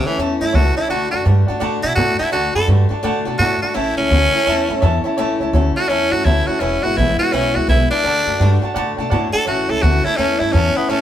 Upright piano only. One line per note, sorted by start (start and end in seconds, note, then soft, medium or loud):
0.04 0.12 C#5 medium
0.04 0.13 E5 medium
0.04 0.13 A5 medium
0.17 0.31 C#5 medium
0.17 0.32 E5 medium
0.17 0.32 A5 loud
0.39 0.48 C#5 medium
0.39 0.48 E5 medium
0.39 0.49 A5 medium
0.53 0.67 C#5 loud
0.53 0.67 E5 medium
0.53 0.68 A5 loud
0.75 0.83 C#5 medium
0.75 0.84 E5 medium
0.75 0.84 A5 medium
0.88 1.02 D5 loud
0.88 1.03 F#5 medium
0.88 1.03 A5 loud
1.11 1.19 D5 medium
1.11 1.20 F#5 medium
1.11 1.20 A5 medium
1.24 1.38 D5 medium
1.24 1.38 F#5 medium
1.24 1.39 A5 medium
1.46 1.55 D5 medium
1.46 1.55 F#5 medium
1.46 1.56 A5 loud
1.60 1.74 D5 loud
1.60 1.74 F#5 loud
1.60 1.75 A5 loud
1.82 1.91 D5 medium
1.82 1.91 F#5 medium
1.95 2.09 D5 loud
1.95 2.10 F#5 medium
1.95 2.10 A5 loud
2.18 2.26 D5 medium
2.18 2.27 F#5 medium
2.18 2.27 A5 medium
2.31 2.45 D5 loud
2.31 2.46 F#5 medium
2.31 2.46 A5 loud
2.54 2.62 D5 medium
2.54 2.63 F#5 medium
2.54 2.63 B5 medium
2.67 2.81 D5 medium
2.67 2.82 F#5 medium
2.67 2.82 A5 medium
2.90 2.98 D5 medium
2.90 2.99 F#5 medium
2.90 2.99 A5 medium
3.03 3.17 D5 loud
3.03 3.17 F#5 loud
3.03 3.18 A5 loud
3.26 3.34 D5 medium
3.26 3.34 F#5 medium
3.26 3.35 A5 medium
3.40 3.53 D5 loud
3.40 3.54 F#5 medium
3.40 3.54 A5 loud
3.62 3.70 D5 medium
3.62 3.70 F#5 medium
3.62 3.71 A5 medium
3.74 3.88 C#5 loud
3.74 3.89 E5 medium
3.74 3.89 A5 loud
3.97 4.05 C#5 medium
3.97 4.06 E5 medium
4.10 4.24 C#5 medium
4.10 4.25 E5 medium
4.10 4.25 A5 medium
4.33 4.41 C#5 medium
4.33 4.41 E5 medium
4.33 4.42 A5 medium
4.46 4.60 C#5 loud
4.46 4.60 E5 loud
4.46 4.61 A5 loud
4.68 4.77 C#5 medium
4.68 4.77 E5 medium
4.68 4.78 A5 medium
4.81 4.95 C#5 loud
4.81 4.96 E5 loud
4.81 4.96 A5 loud
5.04 5.12 C#5 medium
5.04 5.13 E5 medium
5.04 5.13 A5 loud
5.17 5.31 C#5 loud
5.17 5.32 E5 loud
5.17 5.32 A5 loud
5.40 5.48 C#5 medium
5.40 5.49 E5 medium
5.40 5.49 A5 loud
5.53 5.67 C#5 loud
5.53 5.67 E5 medium
5.53 5.68 A5 loud
5.76 5.84 C#5 medium
5.76 5.85 E5 medium
5.76 5.85 A5 medium
5.88 6.03 C#5 medium
5.88 6.03 E5 medium
5.88 6.04 A5 loud
6.11 6.20 C#5 medium
6.11 6.20 E5 medium
6.11 6.21 A5 medium
6.25 6.39 C#5 loud
6.25 6.39 E5 medium
6.25 6.39 A5 loud
6.47 6.55 C#5 medium
6.47 6.56 E5 medium
6.47 6.56 A5 medium
6.60 6.74 B4 medium
6.60 6.75 E5 medium
6.60 6.75 G#5 loud
6.83 6.91 B4 medium
6.83 6.92 E5 medium
6.83 6.92 G#5 medium
6.96 7.10 B4 medium
6.96 7.11 E5 medium
6.96 7.11 G#5 medium
7.18 7.27 B4 medium
7.18 7.27 E5 medium
7.18 7.28 G#5 medium
7.32 7.46 B4 loud
7.32 7.46 E5 medium
7.32 7.47 G#5 loud
7.54 7.63 B4 medium
7.54 7.63 E5 medium
7.54 7.64 G#5 medium
7.68 7.82 B4 loud
7.68 7.82 E5 medium
7.68 7.83 G#5 loud
7.90 7.99 B4 medium
7.90 7.99 E5 medium
7.90 8.00 G#5 medium
8.04 8.18 D5 loud
8.04 8.18 F#5 medium
8.04 8.19 A5 loud
8.26 8.34 D5 medium
8.26 8.35 F#5 medium
8.26 8.35 A5 medium
8.39 8.53 D5 medium
8.39 8.53 F#5 medium
8.39 8.54 A5 loud
8.61 8.70 D5 medium
8.61 8.70 F#5 medium
8.61 8.71 A5 loud
8.74 8.88 D5 loud
8.74 8.89 F#5 loud
8.74 8.89 A5 loud
8.96 9.05 D5 medium
8.96 9.06 F#5 medium
8.96 9.06 A5 loud
9.09 9.24 D5 loud
9.09 9.24 F#5 loud
9.09 9.25 A5 loud
9.32 9.41 D5 medium
9.32 9.41 F#5 medium
9.32 9.42 A5 medium
9.45 9.59 C#5 loud
9.45 9.60 E5 medium
9.45 9.60 A5 loud
9.68 9.76 C#5 medium
9.68 9.77 E5 medium
9.68 9.77 A5 medium
9.80 9.95 C#5 medium
9.80 9.95 E5 medium
9.80 9.96 A5 medium
10.03 10.12 C#5 medium
10.03 10.13 E5 medium
10.03 10.13 A5 medium
10.16 10.31 C#5 loud
10.16 10.31 E5 medium
10.16 10.32 A5 loud
10.39 10.48 C#5 medium
10.39 10.48 E5 medium
10.39 10.48 A5 medium
10.52 10.66 C#5 loud
10.52 10.67 E5 medium
10.52 10.67 A5 loud
10.75 10.83 C#5 medium
10.75 10.84 E5 medium
10.75 10.84 A5 medium
10.88 11.01 C#5 loud
10.88 11.01 E5 medium
10.88 11.01 A5 loud